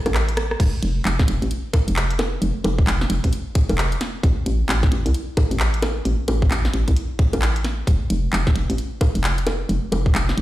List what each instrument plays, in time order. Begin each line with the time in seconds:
0.06 fm bass A1, cross-stick, closed hi-hat, high bongo
0.14 cross-stick, clap
0.29 closed hi-hat
0.37 cross-stick, closed hi-hat
0.51 cross-stick
0.60 fm bass F1, kick, closed hi-hat, crash
0.83 fm bass F1, closed hi-hat
1.05 fm bass F1, clap
1.19 kick, snare
1.28 fm bass F1, closed hi-hat
1.42 fm bass A1, closed hi-hat
1.51 closed hi-hat
1.73 kick, closed hi-hat, high bongo
1.88 fm bass F1, closed hi-hat
1.96 clap
2.11 closed hi-hat
2.19 snare, closed hi-hat, high bongo
2.42 fm bass F1, closed hi-hat
2.64 fm bass F1, closed hi-hat, high bongo
2.78 kick
2.87 fm bass F1, clap
3.01 snare
3.10 fm bass F1, closed hi-hat
3.24 fm bass A1, kick, closed hi-hat
3.33 closed hi-hat
3.55 kick, closed hi-hat
3.69 fm bass F1, closed hi-hat, high bongo
3.78 clap
3.92 closed hi-hat
4.01 snare, closed hi-hat
4.23 fm bass A1, kick, closed hi-hat
4.46 fm bass A1, closed hi-hat
4.69 fm bass A1, clap
4.83 kick, snare
4.92 fm bass A1, closed hi-hat
5.06 fm bass C2, closed hi-hat
5.14 closed hi-hat
5.37 kick, closed hi-hat, high bongo
5.51 fm bass A1, closed hi-hat
5.60 clap
5.74 closed hi-hat
5.82 snare, closed hi-hat, high bongo
6.05 fm bass A1, closed hi-hat
6.28 fm bass A1, closed hi-hat, high bongo
6.42 kick
6.51 fm bass A1, clap
6.65 snare
6.74 fm bass A1, closed hi-hat
6.88 fm bass C2, kick, closed hi-hat
6.96 closed hi-hat
7.19 kick, closed hi-hat
7.33 fm bass A1, closed hi-hat, high bongo
7.42 clap
7.56 closed hi-hat
7.65 snare, closed hi-hat
7.87 fm bass F1, kick, closed hi-hat
8.10 fm bass F1, closed hi-hat
8.33 fm bass F1, clap
8.47 kick, snare
8.56 fm bass F1, closed hi-hat
8.70 fm bass A1, closed hi-hat
8.78 closed hi-hat
9.01 kick, closed hi-hat, high bongo
9.15 fm bass F1, closed hi-hat
9.24 clap
9.38 closed hi-hat
9.47 snare, closed hi-hat, high bongo
9.69 fm bass F1, closed hi-hat
9.92 fm bass F1, closed hi-hat, high bongo
10.06 kick
10.15 fm bass F1, clap
10.29 snare
10.37 fm bass F1, closed hi-hat